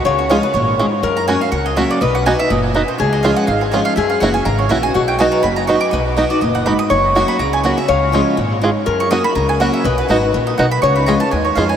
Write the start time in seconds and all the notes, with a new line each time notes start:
0.05 C#2 C#3 F4 C#5
0.19 F#4
0.29 F3 G#3 C#4 F4 G#4 A#4
0.43 C#4 F4 B4
0.54 G#1 A#2 C#5
0.79 G#2 C#4 F4 G#4
1.03 F#2 A#4
1.17 A#5
1.27 F#3 A#3 C#4 F#4 G#5
1.41 C#4 F#4 F5
1.52 C#2 C#3 F#5
1.66 D#5
1.76 F#3 A#3 C#4 F#4 E5
1.91 D5
2.01 B1 B2 B4 D#5
2.15 F#5
2.26 F#3 B3 D#4 F#4 G#5
2.39 D#4 F#4 E5
2.50 F#1 A#2 D#5
2.74 B2 B3 D#4 F#4
2.88 C5
2.98 C#2 C#3 G#4 C#5
3.13 D#5
3.23 F3 G#3 C#4 F4 G#4 F5
3.37 F#5
3.47 G#1 G#2 F5
3.61 G#4
3.72 F3 G#3 C#4 F4 G#4 C#5
3.85 F5
3.96 F#2 G#4 E5
4.10 F5
4.20 F#1 E3 A#3 C#4 E4 F#4 F#5
4.34 C#4 F#4 G#5
4.45 G#1 C#3 A#5
4.58 C#5
4.69 A#1 E3 A#3 C#4 E4 F#4 E5
4.83 C#4 F#4 G#5
4.94 B1 B2 F#4 F#5
5.08 G5
5.19 F#3 B3 D#4 F#4 G#5
5.32 A#5
5.43 F#1 F#2 B5
5.56 A#5
5.67 F#3 B3 D#4 F#4 C#6
5.81 D6
5.91 B1 B2 B4 D#6
6.17 F#3 B3 D#4 F#4
6.30 D#4 F#4 D5
6.41 F#1 A#2 D#5
6.55 F#5
6.66 G#2 B3 D#4 F#4 B5
6.79 D#6
6.90 F#1 F#2 C#5 C#6
7.15 F#3 A#3 C#4 F#4
7.28 B5
7.39 C#2 C#3 A#5
7.53 G#5
7.63 F#3 A#3 C#4 F#4 F#5
7.77 C#4 F#4 E5
7.88 C#2 C#3 C#5 F5
8.12 F3 G#3 C#4 F4 G#4
8.37 G#1 A#2
8.62 G#2 C#4 F4 G#4
8.86 F#2 A#4
9.00 C#6
9.10 F#3 A#3 C#4 F#4 D#6
9.24 C#4 F#4 B5
9.35 C#2 C#3 A#5
9.49 G#5
9.60 F#3 A#3 C#4 F#4 F#5
9.73 E5
9.84 B1 B2 B4 D#5
9.98 B4
10.08 G#1 F#3 B3 D#4 F#4
10.23 D#4 F#4
10.33 A#1 A#2
10.47 D#5
10.58 B1 B2 B3 D#4 F#4 F#5
10.71 B5
10.82 C#2 C#3 C#5 C#6
10.96 B5
11.06 F3 G#3 C#4 F4 G#4 A#5
11.20 C#4 F4 A5
11.31 D#2 G#2 G#5
11.45 C#5
11.55 F2 F3 G#3 C#4 F4 G#4 F5
11.69 G#5